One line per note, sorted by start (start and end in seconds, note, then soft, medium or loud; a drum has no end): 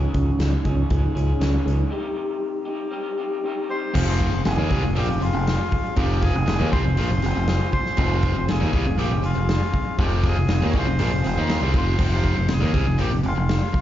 0.00 0.91 C#3 medium
0.00 0.89 G#3 medium
0.00 0.66 C#4 medium
0.00 0.66 D#4 medium
0.00 0.64 G#4 medium
0.14 0.30 C#2 medium
0.14 kick medium
0.14 closed hi-hat medium
0.39 0.55 C#2 medium
0.39 snare medium
0.39 closed hi-hat medium
0.65 0.81 C#2 medium
0.65 0.89 C#4 medium
0.65 0.90 D#4 medium
0.65 0.91 G#4 medium
0.65 kick medium
0.65 closed hi-hat medium
0.90 1.06 C#2 medium
0.90 1.38 G#3 medium
0.90 1.16 C#4 medium
0.90 1.14 D#4 medium
0.90 1.14 G#4 medium
0.90 kick loud
0.90 closed hi-hat medium
1.15 1.31 C#2 medium
1.15 1.39 C#4 medium
1.15 1.40 D#4 medium
1.15 1.40 G#4 medium
1.15 closed hi-hat medium
1.38 1.56 C#2 medium
1.38 1.89 C#3 medium
1.38 1.90 G#3 medium
1.38 1.65 C#4 medium
1.38 1.65 D#4 medium
1.38 1.63 G#4 medium
1.38 snare medium
1.38 closed hi-hat medium
1.64 1.82 C#2 medium
1.64 1.90 C#4 medium
1.64 1.90 D#4 medium
1.64 1.89 G#4 medium
1.64 closed hi-hat soft
1.90 2.92 C3 medium
1.90 2.90 G3 medium
1.90 2.66 C4 medium
1.90 2.65 D#4 medium
1.90 2.64 G4 medium
2.65 2.90 C4 soft
2.65 2.92 D#4 medium
2.65 2.92 G4 medium
2.91 3.43 G3 medium
2.91 3.18 C4 medium
2.91 3.18 D#4 medium
2.91 3.16 G4 medium
3.17 3.43 C4 medium
3.17 3.44 D#4 medium
3.17 3.44 G4 medium
3.43 3.93 C3 medium
3.43 3.93 G3 medium
3.43 3.70 C4 medium
3.43 3.70 D#4 medium
3.43 3.68 G4 medium
3.69 3.94 C4 soft
3.69 3.94 D#4 medium
3.69 3.93 G4 medium
3.69 4.42 C5 loud
3.69 4.42 C6 medium
3.94 4.31 F1 medium
3.94 4.31 F2 medium
3.94 4.32 C3 medium
3.94 4.43 F3 medium
3.94 4.32 F3 medium
3.94 4.21 C4 medium
3.94 4.20 F4 medium
3.94 4.19 G#4 medium
3.94 kick medium
3.94 crash loud
4.20 4.44 C4 soft
4.20 4.45 F4 medium
4.20 4.45 G#4 medium
4.20 kick medium
4.20 open hi-hat medium
4.32 4.45 F1 medium
4.32 4.44 F2 soft
4.32 4.44 C3 medium
4.44 4.57 F1 medium
4.44 4.58 F2 medium
4.44 4.57 C3 medium
4.44 4.93 F3 medium
4.44 4.71 C4 medium
4.44 4.70 F4 medium
4.44 4.69 G#4 medium
4.44 4.98 G#4 medium
4.44 4.93 G#5 medium
4.44 snare loud
4.44 open hi-hat medium
4.58 4.70 D#2 loud
4.58 4.70 D#3 medium
4.58 4.70 A#3 loud
4.69 4.83 C2 medium
4.69 4.82 C3 loud
4.69 4.83 G3 medium
4.69 4.94 C4 medium
4.69 4.95 F4 medium
4.69 4.96 G#4 medium
4.69 kick medium
4.69 open hi-hat medium
4.83 4.96 F1 medium
4.83 4.96 F2 medium
4.83 4.95 C3 medium
4.93 5.08 A#2 medium
4.93 5.44 F3 medium
4.93 5.08 F3 loud
4.93 5.21 C4 loud
4.93 5.20 F4 loud
4.93 5.19 G#4 loud
4.93 open hi-hat medium
4.97 5.09 A#1 medium
4.97 5.23 G4 loud
4.97 5.21 G5 medium
5.09 5.21 F1 medium
5.09 5.19 F2 medium
5.09 5.20 C3 medium
5.19 5.33 F1 medium
5.19 5.32 F2 medium
5.19 5.32 C3 medium
5.19 5.45 C4 medium
5.19 5.46 F4 medium
5.19 6.00 F4 medium
5.19 5.46 G#4 medium
5.19 open hi-hat medium
5.24 5.94 F5 medium
5.33 5.57 F1 medium
5.33 5.54 F2 medium
5.33 5.54 C3 medium
5.44 5.95 F3 medium
5.44 5.96 C4 medium
5.44 5.97 F4 medium
5.44 5.97 G#4 medium
5.44 snare medium
5.44 open hi-hat medium
5.72 muted distorted electric guitar stroke medium
5.72 muted fingered electric bass stroke soft
5.72 kick medium
5.72 open hi-hat soft
5.95 6.32 F1 medium
5.95 6.33 F2 medium
5.95 6.33 C3 medium
5.95 6.46 F3 medium
5.95 6.34 F3 loud
5.95 6.23 C4 medium
5.95 6.22 F4 medium
5.95 6.21 G4 medium
5.95 6.21 G#4 loud
5.95 6.21 G5 medium
5.95 kick loud
5.95 open hi-hat medium
6.21 6.47 C4 medium
6.21 6.47 F4 medium
6.21 6.48 G#4 medium
6.21 6.69 G#4 loud
6.21 6.69 G#5 medium
6.21 kick medium
6.21 open hi-hat medium
6.34 6.47 F1 medium
6.34 6.45 F2 medium
6.34 6.45 C3 medium
6.46 6.60 F1 medium
6.46 6.60 F2 medium
6.46 6.59 C3 medium
6.46 6.96 F3 medium
6.46 6.73 C4 medium
6.46 6.72 F4 medium
6.46 6.71 G#4 medium
6.46 snare loud
6.46 open hi-hat medium
6.59 6.72 D#2 loud
6.59 6.71 D#3 medium
6.59 6.71 A#3 medium
6.71 6.85 C2 medium
6.71 6.83 C3 medium
6.71 6.84 G3 medium
6.71 6.96 C4 medium
6.71 6.98 F4 medium
6.71 6.98 G#4 medium
6.71 7.71 C5 loud
6.71 7.69 C6 medium
6.71 kick medium
6.71 open hi-hat medium
6.84 6.97 F1 medium
6.84 6.97 F2 medium
6.84 6.97 C3 medium
6.96 7.10 A#1 medium
6.96 7.10 A#2 medium
6.96 7.46 F3 loud
6.96 7.10 F3 loud
6.96 7.24 C4 loud
6.96 7.23 F4 medium
6.96 7.22 G#4 medium
6.96 open hi-hat medium
7.11 7.23 F1 medium
7.11 7.22 F2 medium
7.11 7.22 C3 medium
7.22 7.35 F1 medium
7.22 7.34 F2 medium
7.22 7.34 C3 medium
7.22 7.48 C4 medium
7.22 7.48 F4 medium
7.22 7.49 G#4 medium
7.22 snare soft
7.22 open hi-hat medium
7.35 7.59 F1 medium
7.35 7.56 F2 medium
7.35 7.56 C3 medium
7.47 7.96 F3 medium
7.47 7.97 C4 medium
7.47 7.98 F4 medium
7.47 7.99 G#4 medium
7.47 snare loud
7.47 open hi-hat medium
7.72 8.51 C5 loud
7.72 8.44 C6 medium
7.72 muted distorted electric guitar stroke medium
7.72 muted fingered electric bass stroke soft
7.72 kick medium
7.72 open hi-hat medium
7.86 snare soft
7.97 8.34 F1 loud
7.97 8.34 F2 medium
7.97 8.35 C3 medium
7.97 8.47 F3 medium
7.97 8.35 F3 loud
7.97 8.23 C4 medium
7.97 8.23 F4 loud
7.97 8.21 G#4 loud
7.97 kick loud
7.97 open hi-hat medium
8.21 8.47 C4 medium
8.21 8.48 F4 medium
8.21 8.49 G#4 medium
8.21 kick medium
8.21 open hi-hat medium
8.36 8.49 F1 medium
8.36 8.47 F2 soft
8.36 8.48 C3 medium
8.47 8.61 F1 medium
8.47 8.61 F2 medium
8.47 8.59 C3 medium
8.47 8.98 F3 medium
8.47 8.75 C4 medium
8.47 8.73 F4 medium
8.47 9.01 G#4 medium
8.47 8.73 G#4 medium
8.47 8.96 G#5 medium
8.47 snare loud
8.47 open hi-hat medium
8.60 8.73 D#2 loud
8.60 8.72 D#3 medium
8.60 8.72 A#3 loud
8.72 8.85 C2 loud
8.72 8.85 C3 medium
8.72 8.85 G3 loud
8.72 8.99 C4 medium
8.72 9.00 F4 medium
8.72 9.00 G#4 medium
8.72 kick medium
8.72 open hi-hat soft
8.86 8.97 F1 medium
8.86 8.99 F2 medium
8.86 8.97 C3 medium
8.98 9.10 A#1 medium
8.98 9.10 A#2 medium
8.98 9.47 F3 loud
8.98 9.11 F3 loud
8.98 9.25 C4 loud
8.98 9.24 F4 loud
8.98 9.25 G4 medium
8.98 9.23 G#4 loud
8.98 9.22 G5 medium
8.98 open hi-hat medium
9.10 9.23 F1 medium
9.10 9.21 F2 medium
9.10 9.22 C3 medium
9.22 9.36 F1 medium
9.22 9.34 F2 medium
9.22 9.34 C3 medium
9.22 9.48 C4 medium
9.22 9.48 F4 medium
9.22 10.02 F4 medium
9.22 9.49 G#4 medium
9.22 9.96 F5 medium
9.22 open hi-hat medium
9.35 9.60 F1 medium
9.35 9.56 F2 medium
9.35 9.56 C3 medium
9.47 9.96 F3 medium
9.47 9.97 C4 medium
9.47 9.97 F4 medium
9.47 9.98 G#4 medium
9.47 snare loud
9.47 open hi-hat medium
9.73 muted distorted electric guitar stroke medium
9.73 muted fingered electric bass stroke soft
9.73 kick medium
9.73 open hi-hat soft
9.97 10.34 F1 medium
9.97 10.35 F2 medium
9.97 10.35 C3 medium
9.97 10.46 F3 medium
9.97 10.36 F3 loud
9.97 10.23 C4 medium
9.97 10.22 F4 medium
9.97 10.26 G4 medium
9.97 10.21 G#4 loud
9.97 kick loud
9.97 open hi-hat medium
10.01 10.24 G5 medium
10.23 10.47 C4 medium
10.23 10.48 F4 medium
10.23 10.49 G#4 medium
10.23 kick medium
10.23 open hi-hat medium
10.27 10.70 G#4 medium
10.27 10.66 G#5 medium
10.36 10.48 F1 medium
10.36 10.48 F2 medium
10.36 10.48 C3 medium
10.47 10.61 F1 medium
10.47 10.62 F2 medium
10.47 10.61 C3 medium
10.47 10.96 F3 medium
10.47 10.74 C4 medium
10.47 10.74 F4 medium
10.47 10.72 G#4 medium
10.47 snare loud
10.47 open hi-hat medium
10.62 10.73 D#2 loud
10.62 10.74 D#3 medium
10.62 10.74 A#3 loud
10.70 10.99 G#4 medium
10.70 10.76 C#5 medium
10.70 open hi-hat medium
10.74 10.86 C2 medium
10.74 10.86 C3 medium
10.74 10.86 G3 medium
10.74 10.97 C4 medium
10.74 10.98 F4 medium
10.74 kick medium
10.78 11.75 C5 loud
10.78 11.73 C6 medium
10.87 10.99 F1 medium
10.87 10.99 F2 medium
10.87 10.99 C3 medium
10.98 11.11 A#1 medium
10.98 11.11 A#2 medium
10.98 11.46 F3 medium
10.98 11.11 F3 loud
10.98 11.23 C4 medium
10.98 11.23 F4 loud
10.98 11.21 G#4 loud
10.98 open hi-hat medium
11.11 11.24 F1 medium
11.11 11.22 F2 medium
11.11 11.23 C3 medium
11.22 11.37 F1 medium
11.22 11.37 F2 medium
11.22 11.37 C3 medium
11.22 11.47 C4 medium
11.22 11.48 F4 medium
11.22 11.48 G#4 medium
11.22 snare soft
11.22 open hi-hat medium
11.37 11.61 D#2 medium
11.37 11.61 D#3 loud
11.37 11.62 A#3 loud
11.37 11.62 D#4 loud
11.47 11.97 F3 medium
11.47 11.97 C4 medium
11.47 11.98 F4 medium
11.47 11.98 G#4 medium
11.47 snare loud
11.47 open hi-hat medium
11.61 11.74 C2 medium
11.61 11.73 C3 medium
11.61 11.74 G3 medium
11.74 11.98 F1 medium
11.74 11.98 F2 medium
11.74 11.98 C3 medium
11.74 11.99 F3 medium
11.74 12.53 C5 loud
11.74 12.47 C6 medium
11.74 kick medium
11.74 open hi-hat medium
11.99 12.34 F1 medium
11.99 12.35 F2 medium
11.99 12.35 C3 medium
11.99 12.36 F3 loud
11.99 kick loud
11.99 crash medium
12.23 kick medium
12.23 open hi-hat medium
12.37 12.49 F1 medium
12.37 12.47 F2 medium
12.37 12.47 C3 medium
12.48 12.62 F1 medium
12.48 12.62 F2 medium
12.48 12.60 C3 medium
12.48 13.02 G#4 medium
12.48 12.97 G#5 medium
12.48 snare loud
12.48 open hi-hat medium
12.60 12.73 D#2 loud
12.60 12.73 D#3 medium
12.60 12.73 A#3 loud
12.73 12.86 C2 medium
12.73 12.85 C3 medium
12.73 12.86 G3 medium
12.73 kick medium
12.73 open hi-hat medium
12.86 12.99 F1 medium
12.86 12.99 F2 medium
12.86 12.97 C3 medium
12.98 13.11 A#1 medium
12.98 13.10 A#2 medium
12.98 13.11 F3 medium
12.98 13.17 G4 medium
12.98 13.16 G5 medium
12.98 open hi-hat medium
13.11 13.24 F1 medium
13.11 13.22 F2 medium
13.11 13.22 C3 medium
13.20 13.34 F2 medium
13.20 13.34 C3 medium
13.20 13.26 G4 medium
13.20 open hi-hat medium
13.25 13.36 F1 medium
13.25 13.81 F4 medium
13.25 13.81 F5 medium
13.35 13.60 F1 medium
13.35 13.56 F2 medium
13.35 13.56 C3 medium
13.49 snare loud
13.49 open hi-hat medium
13.72 muted distorted electric guitar stroke medium
13.72 muted fingered electric bass stroke soft
13.72 kick medium
13.72 open hi-hat soft